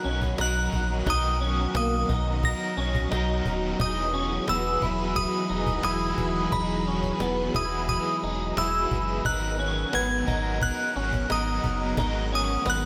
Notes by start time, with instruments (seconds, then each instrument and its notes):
Already playing: overdriven electric guitar D#3 F#3 B3 D#4 A#4, string machine F#3 F#4 D#5, synth bell F#6
0.04 sub bass B1, clean electric guitar C#4
0.22 cajon bass
0.38 sub bass B1, overdriven electric guitar F#3 B3 D#4, clean electric guitar D#4, synth bell F#6, cajon slap
0.42 overdriven electric guitar A#4
0.72 sub bass A#1, cajon bass
1.05 sub bass B1, overdriven electric guitar B2 D#3 F#3, clean electric guitar D#4, cajon bass
1.10 overdriven electric guitar B3 D#4 A#4, synth bell D#6
1.41 clean electric guitar C#4
1.74 sub bass B1, clean electric guitar A#3, synth bell D#6, cajon slap
2.09 sub bass B1, clean electric guitar D#4, cajon bass
2.43 overdriven electric guitar F#3 B3 D#4, synth bell A#6, cajon bass
2.47 overdriven electric guitar A#4
2.77 sub bass B1, clean electric guitar C#4
2.95 cajon bass
3.11 sub bass B1, overdriven electric guitar F#3 B3 D#4, clean electric guitar D#4, cajon slap
3.16 overdriven electric guitar A#4
3.45 sub bass D#1, cajon bass
3.78 sub bass E1, string machine E3 G#4 B4, overdriven electric guitar E3 G#3 B3 D#4, clean electric guitar D#4, synth bell D#6, cajon bass
3.82 overdriven electric guitar G#4
4.14 clean electric guitar C#4
4.48 sub bass E1, clean electric guitar B3, synth bell E6, cajon slap
4.81 sub bass E1, overdriven electric guitar D#4 G#4, clean electric guitar E4, cajon bass
4.86 overdriven electric guitar B3
5.16 overdriven electric guitar G#3 B3 D#4, synth bell D#6, cajon bass
5.20 overdriven electric guitar G#4
5.50 sub bass E1, clean electric guitar D#4
5.67 cajon bass
5.83 sub bass E1, overdriven electric guitar G#3 B3 D#4, clean electric guitar E4, synth bell D#6, cajon slap
5.88 overdriven electric guitar G#4
6.18 sub bass D#1, cajon bass
6.52 sub bass E1, overdriven electric guitar E3 G#3 B3 D#4 G#4, clean electric guitar D#4, synth bell B5, cajon bass
6.87 clean electric guitar C#4
7.03 cajon bass
7.20 sub bass E1, clean electric guitar B3, cajon slap
7.54 sub bass E1, overdriven electric guitar D#4 G#4, clean electric guitar E4, synth bell D#6, cajon bass
7.59 overdriven electric guitar B3
7.89 overdriven electric guitar G#3 B3 D#4, synth bell D#6, cajon bass
7.93 overdriven electric guitar G#4
8.23 sub bass E1, clean electric guitar D#4
8.56 sub bass E1, overdriven electric guitar G#3 B3 D#4, clean electric guitar E4, synth bell E6, cajon slap
8.61 overdriven electric guitar G#4
8.91 sub bass F#1, cajon bass
9.25 sub bass G#1, overdriven electric guitar G#2 D#3 F#3 B3 D#4 A#4, string machine B3 G#4 A#4 F#5, clean electric guitar D#4, synth bell F#6, cajon bass
9.59 clean electric guitar C#4
9.93 sub bass G#1, clean electric guitar B3, synth bell G#6, cajon slap
10.26 sub bass G#1, overdriven electric guitar F#3 B3 D#4 A#4, clean electric guitar D#4, cajon bass
10.60 overdriven electric guitar F#3 B3 D#4, synth bell F#6, cajon bass
10.65 overdriven electric guitar A#4
10.96 sub bass G#1, clean electric guitar C#4
11.13 cajon bass
11.29 sub bass G#1, overdriven electric guitar F#3 B3 D#4, clean electric guitar D#4, synth bell D#6, cajon slap
11.34 overdriven electric guitar A#4
11.64 sub bass F#1, cajon bass
11.97 sub bass G#1, overdriven electric guitar G#2 D#3 F#3 B3 D#4 A#4, clean electric guitar D#4, cajon bass
12.32 clean electric guitar C#4, synth bell D#6
12.66 sub bass G#1, clean electric guitar B3, cajon slap
12.70 synth bell F#6